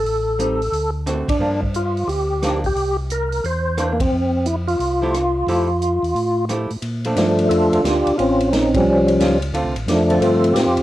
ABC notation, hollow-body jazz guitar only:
X:1
M:4/4
L:1/8
Q:"Swing" 1/4=177
K:F
V:1 name="Hollow-body jazz guitar"
z2 [G,C_E] z3 [D,A,C^F] z | [F,B,D] z4 z [F,B,D] z | z6 [E,B,D] z | z4 z [F,A,EG] z2 |
[F,A,EG] z4 z [F,A,EG] z | [K:Bb] z [F,A,D]3 z4 | z6 [G,^C^E] z | [D,A,CF] z2 [D,A,CF]3 z2 |]